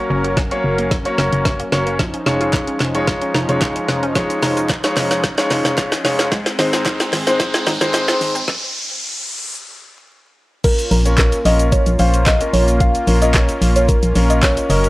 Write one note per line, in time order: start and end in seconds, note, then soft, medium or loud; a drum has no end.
0.00 1.95 F#3 medium
0.00 0.36 A#3 loud
0.00 0.36 C#4 medium
0.00 6.28 C#4 medium
0.00 0.36 F#4 medium
0.00 1.95 A#4 medium
0.00 0.36 C#5 loud
0.10 0.52 F#1 medium
0.10 0.19 C#4 medium
0.24 0.32 F#4 medium
0.24 closed hi-hat medium
0.37 0.46 C#4 medium
0.37 kick loud
0.37 snare medium
0.37 closed hi-hat medium
0.51 0.93 A#3 loud
0.51 0.59 A#3 medium
0.51 0.93 C#4 medium
0.51 0.93 F#4 medium
0.51 0.93 C#5 loud
0.51 closed hi-hat medium
0.64 1.06 F#1 medium
0.78 0.86 A#3 medium
0.78 closed hi-hat medium
0.91 kick loud
0.91 snare medium
0.91 closed hi-hat medium
1.05 1.58 A#3 loud
1.05 1.13 A#3 medium
1.05 1.58 C#4 medium
1.05 1.58 F#4 medium
1.05 1.58 C#5 loud
1.05 closed hi-hat medium
1.18 1.29 F#1 medium
1.18 1.27 C#4 medium
1.18 snare medium
1.32 1.64 F#1 loud
1.32 closed hi-hat medium
1.45 kick loud
1.45 snare medium
1.45 closed hi-hat medium
1.60 1.67 A#3 medium
1.60 closed hi-hat medium
1.72 2.15 F#1 medium
1.72 1.99 A#3 medium
1.72 1.99 C#4 medium
1.72 1.99 F#4 medium
1.72 1.99 C#5 loud
1.72 snare medium
1.87 1.94 A#3 medium
1.87 closed hi-hat soft
1.99 2.08 F3 medium
1.99 6.28 F3 medium
1.99 kick loud
1.99 snare medium
1.99 closed hi-hat medium
1.99 riser medium
2.14 2.21 C#4 medium
2.14 closed hi-hat medium
2.26 2.69 F1 medium
2.26 2.79 G#3 medium
2.26 2.79 D#4 medium
2.26 2.35 D#4 medium
2.26 2.79 F4 medium
2.26 2.79 C#5 loud
2.26 snare medium
2.41 2.48 F4 medium
2.41 closed hi-hat medium
2.53 2.62 D#4 medium
2.53 kick loud
2.53 snare medium
2.53 clap medium
2.53 closed hi-hat medium
2.67 2.75 C#4 medium
2.67 closed hi-hat medium
2.80 3.23 F1 medium
2.80 snare medium
2.80 clap medium
2.94 3.36 G#3 loud
2.94 3.02 C#4 medium
2.94 3.36 D#4 medium
2.94 3.36 F4 medium
2.94 3.36 C#5 loud
2.94 closed hi-hat medium
3.07 kick loud
3.07 snare medium
3.07 closed hi-hat medium
3.21 3.29 C#4 medium
3.21 closed hi-hat medium
3.34 3.46 F1 medium
3.34 3.43 D#4 medium
3.34 snare medium
3.49 3.80 F1 loud
3.49 4.01 G#3 loud
3.49 4.01 D#4 medium
3.49 4.01 F4 medium
3.49 4.01 C#5 loud
3.49 closed hi-hat medium
3.61 kick loud
3.61 snare loud
3.61 clap medium
3.61 closed hi-hat medium
3.76 3.83 C#4 medium
3.76 closed hi-hat medium
3.89 4.31 F1 medium
3.89 snare loud
4.03 4.10 C#4 medium
4.03 closed hi-hat soft
4.15 4.24 F3 loud
4.15 4.68 G#3 loud
4.15 4.68 D#4 medium
4.15 4.68 F4 medium
4.15 4.68 C#5 loud
4.15 kick loud
4.15 snare loud
4.15 closed hi-hat medium
4.15 shaker medium
4.30 4.37 C#4 medium
4.30 closed hi-hat medium
4.30 shaker medium
4.43 4.85 F1 medium
4.43 4.51 D#4 medium
4.43 snare loud
4.43 open hi-hat medium
4.43 shaker medium
4.57 4.64 F4 medium
4.57 closed hi-hat medium
4.57 shaker medium
4.69 4.78 D#4 medium
4.69 kick loud
4.69 snare loud
4.69 clap medium
4.69 closed hi-hat medium
4.69 shaker medium
4.84 5.25 G#3 loud
4.84 4.92 C#4 medium
4.84 5.25 D#4 medium
4.84 5.25 F4 medium
4.84 5.25 C#5 loud
4.84 snare loud
4.84 closed hi-hat medium
4.84 shaker medium
4.97 5.39 F1 medium
4.97 snare loud
4.97 clap medium
4.97 open hi-hat medium
4.97 shaker medium
5.11 5.19 C#4 medium
5.11 snare loud
5.11 closed hi-hat medium
5.11 shaker medium
5.24 kick loud
5.24 snare loud
5.24 closed hi-hat medium
5.24 shaker medium
5.38 5.90 G#3 loud
5.38 5.46 C#4 medium
5.38 5.90 D#4 medium
5.38 5.91 F4 medium
5.38 5.91 C#5 loud
5.38 snare loud
5.38 closed hi-hat medium
5.38 shaker medium
5.50 5.62 F1 medium
5.50 5.59 D#4 medium
5.50 snare loud
5.50 open hi-hat medium
5.50 shaker medium
5.65 5.96 F1 loud
5.65 snare loud
5.65 closed hi-hat medium
5.65 shaker medium
5.78 kick loud
5.78 snare loud
5.78 clap medium
5.78 closed hi-hat medium
5.78 shaker medium
5.92 6.00 C#4 medium
5.92 snare loud
5.92 closed hi-hat medium
5.92 shaker medium
6.04 6.47 F1 medium
6.04 6.32 G#3 medium
6.04 6.32 D#4 medium
6.04 6.32 F4 medium
6.04 6.32 C#5 loud
6.04 snare loud
6.04 open hi-hat medium
6.04 shaker soft
6.19 6.27 C#4 medium
6.19 snare loud
6.19 closed hi-hat soft
6.19 shaker medium
6.32 6.40 G#3 loud
6.32 8.46 G#3 medium
6.32 8.46 C4 medium
6.32 kick loud
6.32 snare loud
6.32 closed hi-hat medium
6.32 shaker medium
6.46 6.54 C4 medium
6.46 snare loud
6.46 closed hi-hat medium
6.46 shaker medium
6.59 7.01 G#1 medium
6.59 7.11 G#3 loud
6.59 7.11 C4 medium
6.59 6.67 D#4 medium
6.59 7.12 D#4 medium
6.59 7.12 C5 loud
6.59 snare loud
6.59 open hi-hat medium
6.59 shaker medium
6.73 6.81 G#4 medium
6.73 snare loud
6.73 closed hi-hat medium
6.73 shaker medium
6.86 6.94 D#4 medium
6.86 kick loud
6.86 snare loud
6.86 clap medium
6.86 closed hi-hat medium
6.86 shaker medium
7.00 7.08 C4 medium
7.00 snare loud
7.00 closed hi-hat medium
7.00 shaker medium
7.13 7.55 G#1 medium
7.13 snare loud
7.13 clap medium
7.13 open hi-hat medium
7.13 shaker medium
7.27 7.68 G#3 loud
7.27 7.35 C4 medium
7.27 7.69 C4 medium
7.27 7.69 D#4 loud
7.27 7.69 C5 loud
7.27 snare loud
7.27 closed hi-hat medium
7.27 shaker medium
7.40 kick loud
7.40 snare loud
7.40 closed hi-hat medium
7.40 shaker medium
7.54 7.62 C4 medium
7.54 snare loud
7.54 closed hi-hat medium
7.54 shaker medium
7.67 7.78 G#1 medium
7.67 7.75 D#4 medium
7.67 snare loud
7.67 open hi-hat medium
7.67 shaker medium
7.81 8.12 G#1 loud
7.81 8.34 G#3 loud
7.81 8.34 C4 medium
7.81 8.34 D#4 medium
7.81 8.34 C5 loud
7.81 snare loud
7.81 closed hi-hat medium
7.81 shaker medium
7.94 snare loud
7.94 clap medium
7.94 closed hi-hat medium
7.94 shaker medium
8.08 8.16 C4 medium
8.08 snare loud
8.08 closed hi-hat medium
8.08 shaker medium
8.21 8.42 G#1 medium
8.21 open hi-hat medium
8.21 shaker medium
8.35 8.43 C4 medium
8.35 closed hi-hat soft
8.35 shaker medium
8.48 kick loud
8.48 snare medium
10.64 14.66 A#3 medium
10.64 14.89 C#4 medium
10.64 14.66 F4 medium
10.64 10.87 A#4 loud
10.64 kick loud
10.64 closed hi-hat medium
10.64 crash loud
10.64 shaker medium
10.79 closed hi-hat medium
10.79 shaker medium
10.91 11.34 A#1 loud
10.91 11.14 A#4 medium
10.91 open hi-hat medium
10.91 shaker medium
11.05 11.36 C#4 medium
11.05 11.36 F4 medium
11.05 11.37 A#4 medium
11.05 closed hi-hat medium
11.05 shaker medium
11.18 11.41 A#4 medium
11.18 kick loud
11.18 snare loud
11.18 clap loud
11.18 clap medium
11.18 closed hi-hat medium
11.18 shaker medium
11.32 closed hi-hat medium
11.32 shaker medium
11.45 11.78 A#1 loud
11.45 11.88 C#4 medium
11.45 11.88 F4 medium
11.45 11.88 A#4 loud
11.45 11.57 D#5 medium
11.45 open hi-hat medium
11.45 shaker medium
11.59 closed hi-hat medium
11.59 shaker medium
11.72 11.95 C#5 medium
11.72 kick loud
11.72 closed hi-hat medium
11.72 shaker medium
11.86 11.97 A#1 medium
11.86 closed hi-hat medium
11.86 shaker medium
11.99 12.42 A#1 loud
11.99 12.31 C#4 medium
11.99 12.31 F4 medium
11.99 12.31 C5 medium
11.99 12.11 F5 medium
11.99 open hi-hat medium
11.99 shaker medium
12.14 closed hi-hat medium
12.14 shaker medium
12.26 12.39 D#5 medium
12.26 kick loud
12.26 snare medium
12.26 clap medium
12.26 clap loud
12.26 closed hi-hat medium
12.26 shaker medium
12.41 12.93 C#4 medium
12.41 12.93 F4 medium
12.41 12.93 A#4 medium
12.41 closed hi-hat medium
12.41 shaker medium
12.53 12.96 A#1 medium
12.53 12.65 C#5 medium
12.53 open hi-hat medium
12.53 shaker medium
12.68 closed hi-hat soft
12.68 shaker medium
12.80 12.93 F5 loud
12.80 kick loud
12.80 closed hi-hat medium
12.80 shaker medium
12.95 closed hi-hat medium
12.95 shaker medium
13.07 13.50 A#1 loud
13.07 13.19 C#4 medium
13.07 13.19 F4 medium
13.07 13.19 A#4 medium
13.07 open hi-hat medium
13.07 shaker medium
13.22 13.95 C#4 medium
13.22 13.95 F4 medium
13.22 13.95 A#4 medium
13.22 13.33 D#5 medium
13.22 closed hi-hat medium
13.22 shaker medium
13.34 13.47 C#5 medium
13.34 kick loud
13.34 snare medium
13.34 clap medium
13.34 clap loud
13.34 closed hi-hat medium
13.34 shaker medium
13.49 closed hi-hat medium
13.49 shaker medium
13.62 13.94 A#1 loud
13.62 open hi-hat medium
13.62 shaker medium
13.76 13.87 C#5 medium
13.76 closed hi-hat medium
13.76 shaker medium
13.89 14.01 A#4 medium
13.89 kick loud
13.89 closed hi-hat medium
13.89 shaker medium
14.03 14.13 A#1 medium
14.03 closed hi-hat medium
14.03 shaker medium
14.15 14.58 A#1 loud
14.15 14.68 C#4 medium
14.15 14.70 F4 medium
14.15 14.69 A#4 loud
14.15 open hi-hat medium
14.15 shaker medium
14.30 14.41 D#5 medium
14.30 closed hi-hat medium
14.30 shaker medium
14.43 14.55 C#5 medium
14.43 kick loud
14.43 snare medium
14.43 clap medium
14.43 clap loud
14.43 closed hi-hat medium
14.43 shaker medium
14.57 closed hi-hat medium
14.57 shaker medium
14.70 14.89 F#1 medium
14.70 14.89 F#3 medium
14.70 14.89 C#4 medium
14.70 14.89 F#4 medium
14.70 14.89 A#4 loud
14.70 14.89 A#4 medium
14.70 14.82 D#5 medium
14.70 open hi-hat medium
14.70 shaker medium
14.84 closed hi-hat soft
14.84 shaker medium